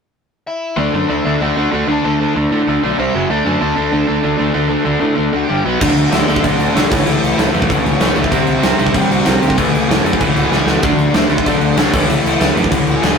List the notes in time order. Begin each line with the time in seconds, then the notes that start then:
0.47 E4 E5
0.76 D2 D3 A3 D4 D5
0.93 F#2 D3 A3 D4
1.08 D2 D3 A3 D4 E5
1.13 E4
1.25 D2 D3 A3 D4
1.40 D2 D3 A3 D4 F#4 F#5
1.57 D2 D3 A3 D4
1.72 D2 D3 A3 D4 F#4
1.76 F#5
1.88 D2 D3 A3 D4 A4
1.92 A5
2.04 D2 D3 A3 D4
2.20 D3 A3 D4
2.35 D2 D3 A3 D4
2.51 A2 D3 A3 D4
2.67 D2 D3 A3 D4
2.83 B1 D3 A3 D4
2.98 C2 C3 G3 C4 E4 E5
3.14 F#1 F#2 C#3 F#3
3.30 D2 D3 A3 D4 D5
3.45 F#2 D3 A3 D4 A4 A5
3.61 D2 D3 A3 D4
3.76 D2 D3 A3 D4
3.92 D2 D3 A3 D4
4.08 D2 D3 A3 D4
4.24 D2 D3 A3 D4
4.38 D2 D3 A3 D4
4.53 D2 D3 A3 D4
4.69 D3 A3 D4
4.74 G#5
4.84 D2 D3 A3 D4
5.00 A2 D3 A3 D4
5.16 D2 D3 A3 D4
5.33 D2 D3 A3 D4 F#4 F#5
5.44 G4 G5
5.48 G1 G2 D3 G3
5.65 B1 B2 F#3 B3 F#4 F#5
5.80 D2 D3 A3 D4, kick, crash
5.96 D2, crash
6.11 D2 D3 A3 D4 E5, snare, crash
6.15 E4
6.28 D2 D3 A3 D4, crash
6.36 kick
6.43 B1 D3 A3 D4, kick, crash
6.47 D4 D5
6.59 D2, crash
6.75 B1 D3 A3 C#4 D4 C#5, snare, crash
6.90 C#2 A2 E3 A3, kick, crash
7.06 C#2 A2 E3 A3 E5, crash
7.10 E4
7.23 C#2, crash
7.37 C#2 A2 E3 A3, snare, crash
7.53 F#2 A2 E3 A3, crash
7.62 kick
7.69 C#2 A2 E3 A3, kick, crash
7.84 C#2 C#4, crash
7.89 C#5
8.00 C#2 A2 E3 A3, snare, crash
8.16 C#2 A2 E3 A3 E4, crash
8.20 E5
8.24 kick
8.31 C2 C3 G3 C4, kick, crash
8.47 C2, crash
8.62 C2 C3 G3 C4, snare, crash
8.79 C2 C3 G3 C4, crash
8.87 kick
8.94 A1 C3 G3 C4 G4 G5, kick, crash
9.10 C2 F#4 F#5, crash
9.24 C2 C3 G3 C4 F#4 F#5, snare, crash
9.40 D2 C3 G3 C4 G4 G5, crash
9.50 kick
9.57 C#2 A2 E3 A3 G#4 G#5, kick, crash
9.74 C#2, crash
9.88 C#2 A2 E3 A3, snare, crash
10.03 F#2 A2 E3 A3, crash
10.13 kick
10.20 C#2 A2 E3 A3, kick, crash
10.36 C#2 F#4 F#5, crash
10.45 G#4 G#5
10.52 C#2 A2 E3 A3, snare
10.66 C#2 A2 E3 A3, snare
10.71 F#4 F#5
10.82 D2 D3 A3 D4, kick, crash
10.98 D2, crash
11.11 D2 D3 A3 D5, snare, crash
11.15 D4 E5
11.19 E4
11.29 D2 D3 A3 D4, crash
11.38 kick
11.45 B1 D3 A3 D4 D5, kick, crash
11.49 D4
11.61 D2, crash
11.76 C2 D3 A3 C#4 D4 C#5, snare, crash
11.93 C#2 A2 E3 A3, kick, crash
12.08 C#2 A2 E3 A3 E4 E5, crash
12.24 C#2, crash
12.40 C#2 A2 E3 A3, snare, crash
12.55 F#2 A2 E3 A3, crash
12.64 kick
12.71 C#2 A2 E3 A3, kick, crash
12.86 C#2 F#5, crash
12.90 F#4
12.96 G#4 G#5
13.02 C#2 A2 E3 A3, snare, crash